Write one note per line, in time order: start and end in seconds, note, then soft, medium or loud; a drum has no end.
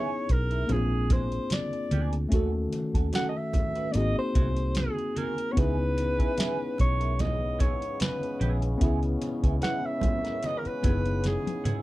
0.00 0.65 B3 medium
0.00 0.65 C#4 medium
0.00 0.66 D#4 medium
0.00 0.10 E4 medium
0.00 0.67 E4 medium
0.00 0.11 G#4 medium
0.00 0.68 G#4 medium
0.00 0.33 C#5 loud
0.29 0.63 B1 medium
0.29 0.74 A#4 loud
0.29 muted clean electric guitar stroke soft
0.29 kick medium
0.29 closed hi-hat medium
0.51 0.63 B3 soft
0.51 0.63 E4 soft
0.51 0.62 A#4 medium
0.51 closed hi-hat soft
0.67 1.38 A#1 loud
0.67 2.28 A#3 medium
0.67 2.28 C4 medium
0.67 2.29 D4 medium
0.67 muted clean electric guitar stroke soft
0.67 closed hi-hat medium
0.67 muted conga medium
0.67 low conga medium
0.72 2.30 F4 soft
0.72 1.14 G#4 medium
0.72 2.31 G#4 medium
1.10 1.24 A#3 medium
1.10 1.24 D4 medium
1.10 1.24 G#4 medium
1.10 1.55 C5 medium
1.10 kick medium
1.10 closed hi-hat medium
1.10 low conga medium
1.32 muted clean electric guitar stroke soft
1.32 closed hi-hat medium
1.50 2.15 D5 medium
1.50 snare loud
1.50 closed hi-hat loud
1.50 high conga medium
1.73 muted clean electric guitar stroke soft
1.73 closed hi-hat soft
1.91 2.25 D2 medium
1.91 2.13 A#3 medium
1.91 2.13 D4 medium
1.91 2.12 G#4 medium
1.91 closed hi-hat medium
1.91 high conga medium
2.13 muted clean electric guitar stroke soft
2.13 closed hi-hat soft
2.29 2.66 D#2 medium
2.29 3.91 D#3 medium
2.29 3.90 A3 medium
2.29 3.90 C#4 medium
2.29 2.49 C#4 medium
2.29 kick loud
2.29 closed hi-hat medium
2.29 muted conga soft
2.33 2.50 F#4 medium
2.33 3.92 F#4 medium
2.33 2.50 A4 medium
2.33 3.93 A4 medium
2.73 muted clean electric guitar stroke soft
2.73 closed hi-hat medium
2.73 muted conga soft
2.94 3.10 D#2 medium
2.94 3.07 C#4 soft
2.94 3.07 F#4 soft
2.94 3.06 A4 medium
2.94 kick medium
2.94 closed hi-hat soft
3.13 3.30 C#4 medium
3.13 3.31 F#4 medium
3.13 3.31 A4 medium
3.13 3.28 F#5 loud
3.13 snare loud
3.13 closed hi-hat medium
3.13 high conga medium
3.29 3.38 D#5 medium
3.36 3.93 E5 loud
3.53 muted clean electric guitar stroke soft
3.53 kick medium
3.53 closed hi-hat medium
3.53 muted conga soft
3.53 low conga medium
3.75 3.88 C#4 soft
3.75 3.88 F#4 soft
3.75 3.87 B4 medium
3.75 closed hi-hat soft
3.91 4.13 G#1 loud
3.91 5.52 A#3 medium
3.91 5.53 C4 medium
3.91 5.54 D#4 medium
3.91 3.98 D5 medium
3.91 muted clean electric guitar stroke soft
3.91 closed hi-hat medium
3.91 muted conga medium
3.96 5.55 F#4 soft
3.96 5.55 G#4 medium
3.96 4.17 D#5 loud
4.19 4.73 C5 loud
4.35 4.88 C2 medium
4.35 4.49 C4 soft
4.35 4.49 F#4 medium
4.35 4.49 G#4 medium
4.35 kick medium
4.35 closed hi-hat medium
4.35 low conga medium
4.57 muted clean electric guitar stroke soft
4.57 closed hi-hat medium
4.75 5.19 G#4 medium
4.75 snare loud
4.75 closed hi-hat loud
4.75 high conga medium
4.97 muted clean electric guitar stroke soft
4.97 closed hi-hat soft
5.16 5.33 C4 medium
5.16 5.34 F#4 medium
5.16 5.34 G#4 medium
5.16 5.53 A#4 medium
5.16 closed hi-hat medium
5.16 high conga medium
5.38 muted clean electric guitar stroke soft
5.38 closed hi-hat soft
5.52 8.76 B3 medium
5.52 8.76 C#4 medium
5.52 5.60 C#5 medium
5.57 6.25 C#2 medium
5.57 11.82 C#3 medium
5.57 11.82 E3 medium
5.57 11.82 G#3 medium
5.57 5.74 B3 medium
5.57 11.82 B3 medium
5.57 11.82 C#4 medium
5.57 8.77 D#4 medium
5.57 5.74 E4 medium
5.57 8.78 E4 medium
5.57 5.75 G#4 medium
5.57 8.79 G#4 medium
5.57 6.79 B4 loud
5.57 kick loud
5.57 closed hi-hat medium
5.57 muted conga medium
5.97 muted clean electric guitar stroke soft
5.97 closed hi-hat medium
5.97 muted conga soft
6.19 6.31 B3 soft
6.19 6.31 E4 medium
6.19 6.30 G#4 medium
6.19 kick medium
6.19 closed hi-hat soft
6.37 6.55 B3 medium
6.37 6.55 E4 medium
6.37 6.56 G#4 medium
6.37 snare loud
6.37 closed hi-hat medium
6.37 high conga medium
6.78 7.78 B1 medium
6.78 7.22 C#5 loud
6.78 muted clean electric guitar stroke soft
6.78 kick medium
6.78 closed hi-hat medium
6.78 muted conga soft
7.00 7.13 B3 soft
7.00 7.12 E4 soft
7.00 7.12 A#4 medium
7.00 closed hi-hat soft
7.18 7.63 D#5 medium
7.18 muted clean electric guitar stroke soft
7.18 closed hi-hat medium
7.18 muted conga medium
7.18 low conga medium
7.59 7.73 B3 medium
7.59 7.73 E4 medium
7.59 7.74 G#4 medium
7.59 8.01 C#5 medium
7.59 kick medium
7.59 closed hi-hat medium
7.59 low conga medium
7.81 muted clean electric guitar stroke soft
7.81 closed hi-hat soft
8.00 8.59 B4 medium
8.00 snare loud
8.00 closed hi-hat loud
8.00 high conga medium
8.21 muted clean electric guitar stroke soft
8.21 closed hi-hat soft
8.40 8.75 A#1 loud
8.40 8.62 B3 medium
8.40 8.62 E4 medium
8.40 8.61 G#4 medium
8.40 closed hi-hat medium
8.40 high conga medium
8.62 muted clean electric guitar stroke soft
8.62 closed hi-hat soft
8.78 9.15 C#2 medium
8.78 10.78 B3 medium
8.78 8.98 B3 medium
8.78 10.79 C#4 medium
8.78 8.99 E4 medium
8.78 kick loud
8.78 closed hi-hat medium
8.78 muted conga soft
8.82 10.81 E4 medium
8.82 8.99 G#4 medium
8.82 10.82 G#4 medium
9.03 closed hi-hat soft
9.21 muted clean electric guitar stroke soft
9.21 closed hi-hat medium
9.21 muted conga soft
9.43 9.59 C#2 medium
9.43 9.56 B3 soft
9.43 9.56 E4 soft
9.43 9.55 G#4 soft
9.43 kick medium
9.43 closed hi-hat soft
9.61 9.79 B3 medium
9.61 9.80 E4 medium
9.61 9.80 G#4 medium
9.61 9.87 F#5 loud
9.61 snare loud
9.61 closed hi-hat medium
9.61 high conga medium
9.85 10.47 E5 loud
10.01 muted clean electric guitar stroke soft
10.01 kick medium
10.01 closed hi-hat medium
10.01 muted conga soft
10.01 low conga medium
10.24 10.37 B3 soft
10.24 10.36 E4 soft
10.24 10.36 A#4 medium
10.24 snare soft
10.24 closed hi-hat medium
10.43 10.59 D#5 loud
10.43 muted clean electric guitar stroke soft
10.43 closed hi-hat medium
10.43 muted conga medium
10.58 10.69 A#4 medium
10.65 11.26 B4 medium
10.65 muted fingered electric bass stroke soft
10.65 closed hi-hat soft
10.83 11.36 F#1 medium
10.83 11.82 B3 soft
10.83 10.97 B3 soft
10.83 11.82 C#4 soft
10.83 11.82 D#4 soft
10.83 10.97 E4 soft
10.83 11.82 E4 soft
10.83 10.98 G#4 medium
10.83 11.82 G#4 medium
10.83 kick loud
10.83 closed hi-hat medium
10.83 low conga medium
11.05 muted clean electric guitar stroke soft
11.05 closed hi-hat soft
11.24 11.82 G#4 medium
11.24 snare medium
11.24 closed hi-hat loud
11.24 high conga medium
11.46 muted clean electric guitar stroke soft
11.46 closed hi-hat soft
11.46 high tom medium
11.64 11.82 B3 medium
11.64 11.82 E4 medium
11.64 11.82 G#4 medium
11.64 closed hi-hat medium
11.64 mid tom loud
11.64 high conga medium